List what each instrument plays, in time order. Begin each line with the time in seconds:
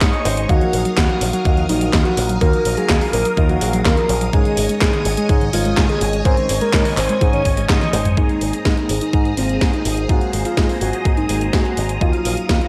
Already playing: string machine G#4 C#5 D#5 C#6
0.01 picked electric bass G#2, soft synth lead D#5, kick, snare, clap, closed hi-hat
0.13 closed hi-hat
0.25 picked electric bass G#1, grand piano G#3 C#4 D#4 C5, open hi-hat
0.37 closed hi-hat
0.49 picked electric bass D#2, synth arpeggio sound D#3, grand piano F#3 A#3 D#4 F5, soft synth lead F#4, string machine A#4 F5 D#6, kick, closed hi-hat
0.61 synth arpeggio sound F3, closed hi-hat
0.73 picked electric bass A#1, synth arpeggio sound F#3, open hi-hat
0.85 synth arpeggio sound F#3, closed hi-hat
0.97 picked electric bass D#2, synth arpeggio sound D#3, soft synth lead F#4, kick, snare, clap, closed hi-hat
1.09 synth arpeggio sound F3, closed hi-hat
1.21 picked electric bass A#1, synth arpeggio sound F#3, open hi-hat
1.33 synth arpeggio sound F#3, soft synth lead F#4, closed hi-hat
1.45 picked electric bass D#2, synth arpeggio sound D#3, kick, closed hi-hat
1.57 synth arpeggio sound F3, closed hi-hat
1.69 picked electric bass A#1, synth arpeggio sound F#3, grand piano F#3 A#3 D#4 F#4, soft synth lead D#4, open hi-hat
1.81 synth arpeggio sound F#3, closed hi-hat
1.93 picked electric bass D#2, synth arpeggio sound D#3, kick, snare, clap, closed hi-hat
2.05 synth arpeggio sound F3, soft synth lead F#4, closed hi-hat
2.17 picked electric bass A#1, synth arpeggio sound F#3, open hi-hat
2.29 synth arpeggio sound F#3, closed hi-hat
2.41 picked electric bass D#2, synth arpeggio sound D#3, grand piano F#3 A#3 D#4 F#4, soft synth lead A#4, kick, closed hi-hat
2.53 synth arpeggio sound F3, closed hi-hat
2.65 picked electric bass A#1, synth arpeggio sound F#3, open hi-hat
2.77 synth arpeggio sound F#3, soft synth lead G#4, closed hi-hat
2.89 picked electric bass D#2, synth arpeggio sound D#3, kick, snare, clap, closed hi-hat
3.01 synth arpeggio sound F3, open hi-hat
3.13 picked electric bass A#1, synth arpeggio sound F#3, soft synth lead A#4, open hi-hat
3.25 synth arpeggio sound F#3, closed hi-hat
3.37 picked electric bass D#2, synth arpeggio sound D#3, grand piano F#3 A#3 D#4 F4, kick, closed hi-hat
3.49 synth arpeggio sound F3, soft synth lead F#4, closed hi-hat
3.61 picked electric bass A#1, grand piano F#3 A#3 D#4 G#4, synth arpeggio sound F#3, open hi-hat
3.73 synth arpeggio sound F#3, closed hi-hat
3.85 picked electric bass D#2, synth arpeggio sound D#3, soft synth lead A#4, kick, snare, clap, closed hi-hat
3.97 synth arpeggio sound F3, closed hi-hat
4.09 picked electric bass A#1, synth arpeggio sound F#3, open hi-hat
4.21 synth arpeggio sound F#3, closed hi-hat
4.33 grand piano G#2 G#3 C#4 D#4 G#4, picked electric bass G#2, synth arpeggio sound C#3, soft synth lead G#4, string machine C#5 D#5 G#5, kick, closed hi-hat
4.45 synth arpeggio sound D#3, closed hi-hat
4.57 picked electric bass G#1, synth arpeggio sound G#3, open hi-hat
4.69 synth arpeggio sound G#3, closed hi-hat
4.81 picked electric bass G#2, synth arpeggio sound C#3, soft synth lead G#4, kick, snare, clap, closed hi-hat
4.93 synth arpeggio sound D#3, closed hi-hat
5.05 picked electric bass G#1, synth arpeggio sound G#3, open hi-hat
5.17 synth arpeggio sound G#3, soft synth lead G#4, closed hi-hat
5.29 picked electric bass G#2, synth arpeggio sound C#3, kick, closed hi-hat
5.41 synth arpeggio sound D#3, closed hi-hat
5.53 picked electric bass G#1, grand piano G#2 G#3 C#4 D#4 A#4, synth arpeggio sound G#3, soft synth lead F4, open hi-hat
5.65 synth arpeggio sound G#3, closed hi-hat
5.77 picked electric bass G#2, synth arpeggio sound C#3, kick, snare, clap, closed hi-hat
5.89 synth arpeggio sound D#3, soft synth lead G#4, closed hi-hat
6.01 picked electric bass G#1, synth arpeggio sound G#3, open hi-hat
6.13 synth arpeggio sound G#3, closed hi-hat
6.25 picked electric bass G#2, grand piano G#2 G#3 C#4 D#4 A#4, synth arpeggio sound C#3, soft synth lead C5, kick, closed hi-hat
6.37 synth arpeggio sound D#3, closed hi-hat
6.49 picked electric bass G#1, synth arpeggio sound G#3, open hi-hat
6.61 synth arpeggio sound G#3, soft synth lead A#4, closed hi-hat
6.73 picked electric bass G#2, synth arpeggio sound C#3, kick, snare, clap, closed hi-hat
6.85 synth arpeggio sound D#3, open hi-hat
6.97 picked electric bass G#1, synth arpeggio sound G#3, soft synth lead C5, clap, open hi-hat
7.09 synth arpeggio sound G#3, closed hi-hat
7.21 picked electric bass G#2, grand piano G#2 G#3 C#4 D#4 G#4, synth arpeggio sound C#3, kick, closed hi-hat
7.33 synth arpeggio sound D#3, soft synth lead C#5, closed hi-hat
7.45 picked electric bass G#1, synth arpeggio sound G#3, kick, open hi-hat
7.57 synth arpeggio sound G#3, closed hi-hat
7.69 picked electric bass G#2, synth arpeggio sound C#3, soft synth lead D#5, kick, snare, clap, closed hi-hat, high tom
7.81 synth arpeggio sound D#3, snare, closed hi-hat, high tom
7.93 picked electric bass G#1, grand piano G#2 G#3 C#4 D#4 C5, synth arpeggio sound G#3, open hi-hat
8.05 synth arpeggio sound G#3, closed hi-hat, mid tom
8.17 grand piano G#2 G#3 A#3 C4 D#4, picked electric bass G#2, soft synth lead D#4, string machine G#4 C5 A#5 D#6, kick, closed hi-hat
8.29 closed hi-hat
8.41 picked electric bass G#1, open hi-hat
8.53 closed hi-hat
8.65 picked electric bass G#2, soft synth lead D#4, kick, snare, closed hi-hat
8.77 closed hi-hat
8.89 picked electric bass G#1, open hi-hat
9.01 soft synth lead D#4, closed hi-hat
9.13 picked electric bass G#2, kick, closed hi-hat
9.25 closed hi-hat
9.37 picked electric bass G#1, grand piano G#2 G#3 A#3 C4 F4, soft synth lead C4, open hi-hat
9.49 closed hi-hat
9.61 picked electric bass G#2, kick, snare, closed hi-hat
9.73 soft synth lead D#4, closed hi-hat
9.85 picked electric bass G#1, open hi-hat
9.97 closed hi-hat
10.09 picked electric bass G#2, grand piano G#2 G#3 A#3 C4 F4, soft synth lead F#4, kick, closed hi-hat
10.21 closed hi-hat
10.33 picked electric bass G#1, open hi-hat
10.45 soft synth lead F4, closed hi-hat
10.57 picked electric bass G#2, kick, snare, closed hi-hat
10.69 open hi-hat
10.81 picked electric bass G#1, soft synth lead F#4, open hi-hat
10.93 closed hi-hat
11.05 picked electric bass G#2, grand piano G#2 G#3 A#3 C4 D#4, kick, closed hi-hat
11.17 soft synth lead D#4, closed hi-hat
11.29 picked electric bass G#1, grand piano G#2 G#3 A#3 C4 F#4, open hi-hat
11.41 closed hi-hat
11.53 picked electric bass G#2, soft synth lead F#4, kick, snare, closed hi-hat
11.65 closed hi-hat
11.77 picked electric bass G#1, open hi-hat
11.89 closed hi-hat
12.01 picked electric bass D#2, grand piano F#3 A#3 D#4 F4, string machine F#3 F5, soft synth lead F4, kick, closed hi-hat
12.13 closed hi-hat
12.25 picked electric bass A#1, open hi-hat
12.37 closed hi-hat
12.49 picked electric bass D#2, soft synth lead F4, kick, snare, closed hi-hat
12.61 closed hi-hat